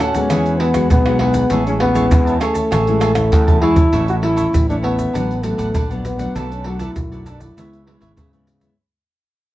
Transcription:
Already playing: A2 A3 D4 F#4
0.00 C#4 D4 A4 D5 F#5, pandeiro, tamborim, shaker
0.14 G#3 B3 F#4 A4 D5 F#5, pandeiro, shaker, surdo
0.30 E2 E3 E4 G#4 B4 F#5, pandeiro, tamborim, shaker, surdo
0.46 pandeiro, shaker
0.60 B3 E4 G#4 B4 F#5, pandeiro
0.74 G#3 B3 F#4 G#4 B4 F#5, pandeiro, tamborim, shaker, surdo
0.90 B1 B2 B3, pandeiro, shaker, surdo
1.06 G#3 B3 F#4 G#4 B4 F#5, pandeiro, tamborim, shaker
1.19 B3 E4 G#4 B4 F#5, pandeiro, tamborim
1.34 G#4 B4 F#5, pandeiro, shaker, surdo
1.50 A1 A2 G#3 C#4 E4 G#4 C#5 E5 A5, pandeiro, shaker, surdo
1.66 G#3 C#4 E4, pandeiro, shaker
1.80 B3 G#4 C#5 E5 A5, pandeiro, tamborim, surdo
1.94 G#3 C#4 E4 G#4 C#5 E5 A5, pandeiro, shaker, surdo
2.11 E2 E3, pandeiro, shaker, surdo
2.26 C#5 E5 A5, pandeiro, shaker
2.40 A3 C#4 E4 G#4 C#5 E5 A5, pandeiro, tamborim, shaker
2.54 C#5 E5 A5, pandeiro, shaker, surdo
2.71 A1 A2 G#4 C#5 E5 A5, pandeiro, tamborim, shaker, surdo
2.87 G#3 C#4 E4, pandeiro, shaker
3.00 G#4 C#5 E5 A5, pandeiro, tamborim, shaker
3.15 C#4 E4 C#5 E5 A5, pandeiro, tamborim, shaker, surdo
3.32 E2 E3, pandeiro, shaker, surdo
3.47 C#5 E5 A5, pandeiro, shaker, surdo
3.61 G#3 C#4 E4 G#4 C#5 E5 A5, pandeiro
3.76 C#5 E5 A5, pandeiro, shaker, surdo
3.92 A1 A2 A3 C#4 E4 A4 C#5 E5, pandeiro, shaker, surdo
4.08 F#4, pandeiro, shaker
4.22 A3 C#4 E4 A4 C#5 E5, pandeiro
4.36 E4 A4 C#5 E5, pandeiro, shaker, surdo
4.53 A1 E3, pandeiro, shaker, surdo
4.68 A3 C#4 D4 E4 A4 C#5 E5, pandeiro, shaker
4.82 B3 E4 A4 C#5 E5, pandeiro
4.97 A4 C#5 E5, pandeiro, shaker, surdo
5.13 A1 A2 F#3 B3 D4 B4 D5 F#5, pandeiro, shaker, surdo
5.31 pandeiro, shaker
5.43 F#3 A3 B3 D4 B4 D5 F#5, pandeiro, shaker
5.58 A1 D4 B4 D5 F#5, pandeiro, shaker, surdo
5.74 A#1 A2 D4 B4 D5 F#5, pandeiro, shaker, surdo
5.90 F#3 B3 D4 B4 D5 F#5, pandeiro, shaker
6.05 B3, pandeiro, shaker
6.18 F#3 A3 D4 B4 D5 F#5, pandeiro, shaker, surdo
6.35 B1 B2 D4 A4 B4 D5, pandeiro, shaker, surdo
6.52 C#4, pandeiro, shaker
6.64 F#3 A3 D4 F#4 A4 B4 D5, pandeiro
6.79 D4 E4 A4 B4 D5, pandeiro, shaker, surdo
6.96 B1 F#2, pandeiro, shaker, surdo
7.11 F#3 A3 D4 A4 B4 D5, pandeiro, shaker
7.26 D4 A4 B4 D5, pandeiro, shaker
7.39 E4 A4 B4 D5, pandeiro, shaker, surdo
7.56 C#2 C#3 G#3 B3 E4 B4 C#5 E5, pandeiro, shaker, surdo
7.73 pandeiro, shaker
7.86 G#3 B3 E4 B4 C#5 E5, pandeiro
8.00 G#1 E4 B4 C#5 E5, pandeiro, shaker, surdo
8.16 G#2 C#3 E4 B4 C#5 E5, pandeiro, shaker, surdo
8.32 G#3 B3 E4 B4 C#5 E5, pandeiro, shaker
8.47 pandeiro, shaker
8.60 G#3 B3 E4 B4 C#5 E5, pandeiro, shaker, surdo

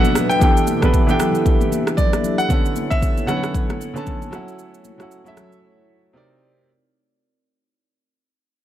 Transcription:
Already playing: B2 B3 D4 A4 B4 C#5 E5 F#5, downlifter
0.04 high conga, shaker
0.15 cross-stick, high conga, low conga, shaker
0.29 G5, shaker
0.39 E3 B3 D4 E4 G4 A4 E5 G5, kick, shaker
0.57 shaker
0.67 high conga, shaker
0.81 E3 B3 D4 G4 A4 B4, kick, cross-stick, shaker
0.94 kick, shaker
1.07 E3 B3 D4 G4 A4 G5, high conga, shaker
1.20 cross-stick, low conga, shaker
1.35 shaker
1.46 kick, low conga, shaker
1.61 high conga, shaker
1.72 high conga, shaker
1.87 cross-stick, shaker
1.97 D5, kick, low conga, shaker
2.13 cross-stick, high conga, shaker
2.24 high conga, low conga, shaker
2.38 F#5, shaker
2.48 D3 B3 C#4 A4 C#5 F#5, kick, shaker
2.66 shaker
2.76 high conga, shaker
2.90 E5, kick, shaker
3.02 kick, shaker
3.17 high conga, shaker
3.26 D3 B3 C#4 A4 B4 F#5, cross-stick, low conga, shaker
3.37 C#5
3.44 cross-stick, shaker
3.54 kick, low conga, shaker
3.70 cross-stick, high conga, shaker
3.81 high conga, shaker
3.94 D3 B3 C#4 A4 A5, shaker
4.07 kick, low conga, shaker
4.22 high conga, shaker
4.31 F#3 A3 C#4 E4 F#4 A4 F#5, cross-stick, high conga, low conga, shaker
4.48 shaker
4.59 shaker
4.74 shaker
4.85 high conga, shaker
4.98 F#3 C#4 E4 A4 F#5, cross-stick, shaker
5.11 shaker
5.24 F#3 C#4 E4 A4 E5, high conga, shaker
5.37 cross-stick, low conga, shaker
5.52 shaker
6.13 C3 C4 D#4 A#4 D5

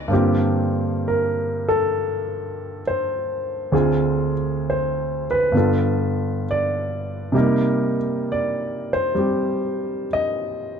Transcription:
Already playing: D2 D3 C4 D#4 F#4 C5 F#5
0.08 G2 D3 A#3 C4
0.13 F4 G4
1.08 A#4
1.69 A4
2.87 C5
3.72 D2 D3 C4 F4 G#4
4.70 C5
5.31 B4
5.52 G2 D3 B3 F4
5.57 A4
6.51 D5
7.32 C3 G3 A#3
7.36 D#4 A#4
8.32 D5
8.93 C5
9.15 G3 C4 G4
10.13 D#5

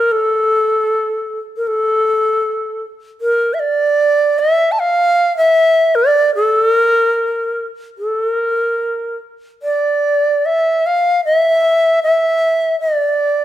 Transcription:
Already playing: A#4
0.12 A4
1.57 A#4
1.67 A4
3.21 A#4
3.54 E5
3.59 D5
4.39 E5
4.72 A5
4.79 F5
5.37 E5
5.95 D5
6.35 A4
6.66 A#4
7.98 A4
8.26 A#4
9.62 D5
10.45 E5
10.86 F5
11.25 E5
12.03 E5
12.81 D5

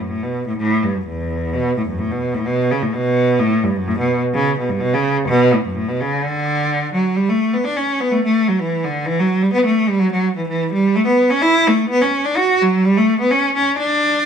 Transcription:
0.00 F#2
0.09 A2
0.23 B2
0.47 A2
0.58 A2
0.83 G2
0.95 F#2
1.06 E2
1.53 B2
1.77 A2
1.85 E2 F#2
1.98 A2
2.11 B2
2.34 A2
2.46 B2
2.71 C#3
2.83 A2
2.93 B2
3.39 A2
3.63 G2
3.76 F#2
3.87 A2
3.99 B2
4.34 C#3
4.59 B2
4.69 G2
4.80 B2
4.94 C#3
5.28 B2
5.54 A2
5.65 F#2
5.75 A2
5.89 B2
6.01 C#3
6.23 D3
6.94 F#3
7.16 G3
7.30 A3
7.53 B3
7.64 D4
7.76 C#4
8.00 B3
8.12 A3
8.25 A3
8.48 F#3
8.60 E3
8.84 D3
9.06 E3
9.19 F#3
9.42 G3
9.53 B3
9.66 A3
9.88 G3
9.99 F#3
10.12 F#3
10.36 E3
10.48 E3
10.73 G3
10.96 A3
11.07 B3
11.30 C#4
11.42 E4
11.67 A3
11.89 B3
12.02 C#4
12.25 D4
12.36 F#4
12.62 F#3
12.85 G3
12.98 A3
13.20 B3
13.31 C#4
13.56 C#4
13.78 D4

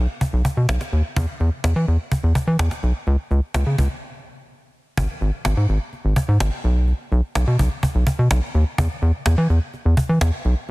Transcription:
0.21 cajon bass
0.33 B1
0.45 cajon bass
0.57 B2
0.69 B1, cajon slap
0.81 cajon slap
0.92 D#2, cajon slap
1.16 E2, cajon bass
1.40 E2, cajon slap
1.64 E2, cajon slap
1.76 E3
1.88 E2, cajon slap
2.12 cajon bass
2.24 E2
2.35 cajon bass
2.47 E3
2.59 E2, cajon slap
2.71 cajon slap
2.83 B1, cajon slap
3.07 C#2, cajon slap
3.31 C#2, cajon slap
3.54 C#2, cajon slap
3.66 C#3
3.78 C#2, cajon bass
4.97 G#1, cajon bass
5.21 G#1, cajon slap
5.45 G#1, cajon slap
5.57 G#2
5.69 G#1, cajon slap
5.93 cajon slap
6.05 G#1
6.16 cajon bass
6.28 G#2
6.40 G#1, cajon slap
6.64 B1, cajon slap
6.88 cajon slap
7.12 B1, cajon slap
7.35 B1, cajon slap
7.47 B2
7.59 B1, cajon bass
7.83 cajon bass
7.95 B1
8.07 cajon bass
8.19 B2
8.31 B1, cajon slap
8.54 D#2, cajon slap
8.78 E2, cajon bass
9.02 E2, cajon slap
9.26 E2, cajon slap
9.38 E3
9.50 E2, cajon slap
9.74 cajon slap
9.85 E2
9.97 cajon bass
10.09 E3
10.21 E2, cajon slap
10.45 B1, cajon slap

